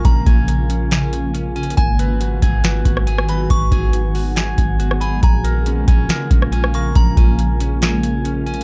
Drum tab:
HH |x-----x-----x-----x-----x-----x-----x-----x-x-x-|x-----x-----x-----x-----x-----x-----x-----x-----|x-----x-----x-----o-----x-----x-----x-----x-----|x-----x-----x-----x-----x-----x-----x-----x-----|
SD |------------------------o-----------------------|------------------------o--------r-----r--------|------------------------o--------------r--------|------------------------o--------r-----r--------|
BD |o-----o-----------------------------------------|o-----------------o-----------o-----------------|o-----o-----------------------o-----------------|o-----------------o-----------o-----------------|

HH |x-----x-----x-----x-----x-----x-----x-----x-x---|
SD |------------------------o-----------------------|
BD |o-----o-----------------------------------------|